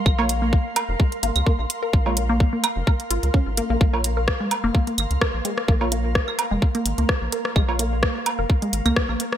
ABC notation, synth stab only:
X:1
M:4/4
L:1/16
Q:"Swing 16ths" 1/4=128
K:Bbm
V:1 name="Synth stab"
z [B,Fd] z12 z2 | z [B,Fd] z12 z2 | z [B,Fd] z12 z2 | z [B,Fd] z12 z2 |
z [B,Fd] z12 z2 |]